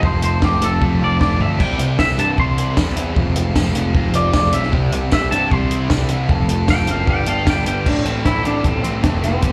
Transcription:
Already playing: C4
0.02 F1 F2 C4 F4 A4 C5, kick
0.21 F1 F4 A4 C5, closed hi-hat
0.41 F1 F3 C4 F4 A4, kick, snare
0.45 G4
0.61 F1 C4 F4 A4, closed hi-hat
0.81 F1 A3, kick, high tom
1.01 F1 F4 D5
1.19 F1 A3 C4 F4 A4 D5, kick, snare
1.38 D2 F3 F4 A4 E5, floor tom
1.57 C2 C3 G3 C4 E4 G5, kick, crash
1.77 C2 C4 E4, closed hi-hat
1.97 C2 E3 G3 C4 E4 E5, kick, snare, tambourine
2.16 G2 C4 E4 A5, closed hi-hat
2.37 C2 G3 C6, kick
2.57 E4, closed hi-hat
2.76 E2 G3 C4 E4, kick, snare, tambourine
2.96 E3 C4 E4, closed hi-hat
3.15 F1 F2 G#3 C4 F4, kick
3.36 F1 C4 F4, closed hi-hat
3.56 F1 F3 G#3 C4 F4, kick, snare, tambourine
3.75 F1 C4 F4, closed hi-hat
3.94 F1 G#3, kick
4.14 F1 F4 D5, closed hi-hat
4.33 F1 G#3 C4 F4 D5, kick, snare, tambourine
4.53 B1 F3 C4 F4 E5, closed hi-hat
4.63 snare
4.72 C2 C3 G3 C4 E4 G5, kick
4.92 C2 C4 E4, closed hi-hat
5.11 C2 E3 G3 C4 E4 E5, kick, snare, tambourine
5.31 G2 C4 E4 A5, closed hi-hat
5.51 C2 G3 C6, kick
5.71 E4, closed hi-hat
5.90 C2 G3 C4 E4, kick, snare, tambourine
6.09 E3 C4 E4, closed hi-hat
6.29 F1 F2 C4 F4 A4, kick
6.49 F1 F4 A4, closed hi-hat
6.68 F1 F3 C4 F4 A4 G5, kick, snare, tambourine
6.87 F#1 C4 F4 A4 F5, closed hi-hat
7.07 G1 G3 B3 D4 G4 G5, kick
7.27 G1 A4 F5, closed hi-hat
7.46 G1 B3 D4 G4 G5, kick, snare, tambourine
7.65 G1 G3 D4 G4 G5, closed hi-hat
7.85 A1 A2 E3 A3 C4 D4, kick, crash
8.04 A1 A3 C4 E4, closed hi-hat
8.24 A1 E3 A3 C4 E4 A4, kick, snare, closed hi-hat
8.44 A1 D4 E4, closed hi-hat
8.64 A1 G3 C4, kick, closed hi-hat
8.83 A1 A3 C4, closed hi-hat
9.02 F1 E3 A3 C4 E4, kick, snare, closed hi-hat
9.22 G3 A3 C4, snare, closed hi-hat
9.41 G1 E3 G3 A#3 C4 G4, kick, closed hi-hat

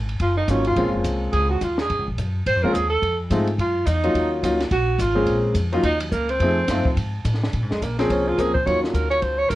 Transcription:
Already playing: G#1
0.09 ride
0.20 F#1 F4, kick, ride
0.37 D#4
0.48 G#1 F#3 A#3 C#4 D#4 F4, kick, hi-hat pedal, ride
0.64 F4, ride
0.76 A#1 G#3 A#3 C4 C#4 F4, kick, ride
0.85 G#1
0.94 F1
1.04 C2, kick, hi-hat pedal, ride
1.33 C#2 G#4, kick, ride
1.50 F#4
1.61 D#2 F4, kick, hi-hat pedal, ride
1.78 G#4, snare
1.90 F2, kick, ride
1.99 C#2
2.08 A#1
2.18 F#2, kick, hi-hat pedal, ride
2.46 G#2 C5, kick, ride
2.56 F2
2.63 C#2 G#3 A#3 C4 C#4 F4 A#4
2.74 D#2 G#4, kick, hi-hat pedal, ride
2.90 A4
3.02 F2, kick, ride
3.30 G#2 G#3 A3 C4 D#4 F4, kick, hi-hat pedal, ride
3.47 ride
3.58 F#2 F4, kick, ride
3.86 E2 D#4, kick, hi-hat pedal, ride
4.03 F#3 A#3 C#4 D#4 F4, ride
4.14 D#2, kick, ride
4.43 C#2 F#3 A#3 C#4 D#4 F4, kick, hi-hat pedal, ride
4.60 snare, ride
4.71 A#1 F#4, kick, ride
4.99 G#1 F4, kick, hi-hat pedal, ride
5.15 G#3 A#3 C4 C#4 G#4
5.27 A#1, kick, ride
5.55 F2, kick, hi-hat pedal, ride
5.73 F#3 A#3 C#4 D#4 F4, ride
5.83 D#2 D#4, kick, ride
6.00 F#3, ride
6.11 C#2 A#3, kick, hi-hat pedal
6.29 C4, ride
6.40 F2 F3 A3 C4 D#4 G#4, kick, ride
6.68 F#2 F3 A3 C4 D#4 F4, kick, snare, hi-hat pedal, ride
6.85 muted upright bass stroke, kick
6.97 G#2, kick, ride
7.25 A2, kick, hi-hat pedal, ride
7.34 snare
7.43 snare
7.53 A#2, kick, ride
7.62 G#2
7.70 F2 G#3, snare
7.81 A#1 A#3, kick, hi-hat pedal, ride
7.98 F3 A#3 C4 C#4 G#4, snare, ride
8.10 C2 C#4, kick, ride
8.28 F4
8.38 C#2 F3 A#3 C4 C#4 G#4 A#4, kick, hi-hat pedal, ride
8.54 C5, kick
8.66 D#2 F#3 A#3 C#4 D#4 F4 C#5, kick, ride
8.83 F4, snare
8.94 D2 A#4, kick, hi-hat pedal, ride
9.10 C#5, ride
9.22 C#2 C5, kick, ride
9.38 C#5
9.49 C2 A#4, kick, hi-hat pedal, ride

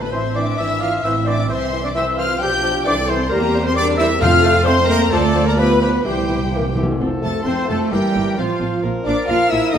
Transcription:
Already playing: A1
0.01 B3 B4 B5
0.11 E3 C4 C5 E5 C6
0.34 E3 D4 C5 D5 D6
0.57 G#1 E3 D4 E4 D5 E5 E6
0.79 F4 D5 F5 F6
0.83 E3 F6
1.02 A1 E3 C4 E4 C5 E5 E6
1.24 E3 D4 C5 D5 D6
1.30 D6
1.47 C2 E3 C4 C5 E5 C6
1.52 C6
1.72 E3 C5
1.84 D4 D5 D6
1.95 E3 C4 E4 C5 E5 E6
2.17 E3 F4 C5 F5 F6
2.38 B1 F3 D4 G4 D5 G5 G6
2.43 G6
2.63 F3 D5
2.85 C2 E3 C4 D4 A4 C5 D5 D6
3.08 E3 C4 C5 C6
3.30 E2 G3 A#3 C4 G4 A#4 C5 A#5
3.54 G3 C5
3.63 C4 C5 C6
3.75 G3 D4 A#4 C5 D5 D6
3.97 G3 E4 C5 E5 E6
4.20 F2 A3 C4 F4 A4 C5 F5 F6
4.44 A3 C5
4.64 A3 C4 C5 C6
4.86 A3 A#3 A#4 C5 A#5
5.10 D2 F3 A3 F4 A4 D5 A5
5.14 C5
5.35 F3 C5
5.45 A#3 A#4 A#5
5.57 F3 G3 B3 F4 G4 B4 B5
5.80 F3 B3 G4 B4 B5
6.04 C2 C3 E3 G3 E4 G4 C5 G5
6.14 C3
6.21 C3
6.29 C3 E3 G4
6.37 C3
6.45 C3
6.51 C3 E3 A#3 G4
6.60 C3
6.68 C3
6.74 C3 E3 A3 G4
6.83 C3
6.91 C3
7.00 F1 F3 C4 A4
7.20 F1 F3 A3 C4 A4 A5
7.25 A4
7.43 F1 F3 C4 C5 C6
7.48 C5
7.66 F3 A3 C4 A4 A5
7.70 F1 A4
7.91 G1 E3 G3 A#3 E4 G4 A#4 G5
8.14 G1 A#3 E4
8.36 A1 F3 C4 F4 C5 F5
8.40 F4
8.60 A1 C4 F4
8.83 A#1 A#3 F4 A#4
9.03 A#1 A#3 D4 F4 D5 D6
9.08 D5
9.26 A#1 A#3 F4 F5 F6
9.30 F5
9.49 A#1 A#3 E4 F4 E5 E6
9.71 C2 D#3 A3 D#4 D#5 D#6
9.75 A4

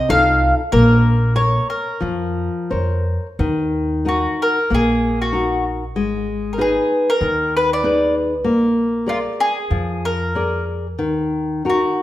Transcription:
0.09 C2 D#4 F4 A4 F5
0.72 A#1 A#3 A#4
1.36 A#4 C#5
1.70 A#4
2.00 F2 F3
2.70 F2 A#4 C5 C#5
3.39 D#2 D#3
4.05 D#4 F#4 A#4
4.42 A#4
4.70 A#1 A#3
4.75 G#4
5.22 F#4
5.32 D#4 F#4 A#4
5.96 G#1 G#3
6.53 A#4
6.58 D#4 G#4 B4
7.10 A#4
7.21 D#2 D#3
7.57 B4
7.73 D5
7.84 D#4 G#4 B4
8.44 A#1 A#3
9.06 F4 G#4 A#4 D5
9.40 G#4
9.70 F2 F3
10.05 A#4
10.35 G#4 A#4 D5
10.98 D#2 D#3
11.65 D#4 F#4 A#4
11.70 F#4

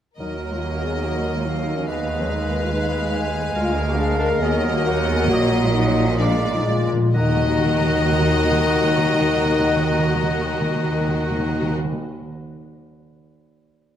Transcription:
0.18 D#2 D#3 F#3 D#4 A#4 D#5
0.51 G#3 F4
0.61 A#3 F#4
0.83 B3 G#4
1.04 A#3 F#4 D#5
1.36 G#3 F4
1.45 F#3 D#4 F5
1.77 F3 C#4
1.87 D#3 G#3 B3 B4 D#5 F5
2.19 F3 C#4
2.28 G#3 D#4
2.61 G#3 F4
2.71 G#3 D#4 B4
3.14 G#5
3.55 D2 G#3 F4 A#4
3.89 A#3 F#4
3.98 D4 G#4 F5
4.19 D4 A#4
4.41 D#2 F#3 B3 G#4 D#5
4.74 A#3 F#4
4.87 F#5
5.07 B3 G#4
5.29 A#1 A#2 A#3 F#4 D#5
5.62 G#3 F4
5.73 F#3 D#4 F#5
6.06 F3 C#4
6.18 A#2 F3 G#3 D4 D5 F5
6.28 A#2
6.52 A#2 F#3 D#4
6.59 A#2
6.66 A#2 G#3 F4 D5
6.76 A#2
6.85 A#2
6.93 A#2
7.02 A#2
7.14 D#2 D#3 D#4 F#4 A#4 D#5 F#5 A#5
7.21 D#3
7.29 D#3
7.36 D#3
7.43 D#3
7.50 D#3
7.58 D#3
7.66 D#3
7.74 D#3
7.81 D#3
7.89 D#3
7.97 D#3
8.04 D#3
8.12 D#3
8.21 D#3
8.28 D#3
8.36 D#3
8.44 D#3
8.51 D#3
8.59 D#3
8.67 D#3
8.75 D#3
8.82 D#3
8.90 D#3
8.97 D#3
9.05 D#3
9.13 D#3
9.20 D#3
9.29 D#3
9.37 D#3
9.44 D#3
9.52 D#3
9.59 D#3
9.68 D#3
9.75 D#3
9.83 D#3
9.90 D#3
9.99 D#3
10.06 D#3
10.15 D#3
10.22 D#3
10.29 D#3
10.37 D#3
10.45 D#3
10.52 D#3
10.60 D#3
10.69 D#3
10.76 D#3
10.83 D#3
10.91 D#3
11.00 D#3
11.07 D#3
11.15 D#3
11.22 D#3
11.31 D#3
11.38 D#3
11.46 D#3
11.54 D#3
11.62 D#3
11.69 D#3
11.77 D#3
11.85 D#3
11.93 D#3

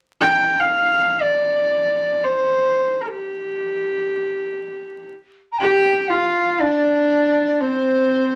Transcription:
0.21 G5
0.60 F5
1.21 D5
2.24 C5
3.01 A#4
3.09 G4
5.52 A#5
5.59 G4 G5
6.08 F4 F5
6.60 D4 D5
7.60 C4 C5

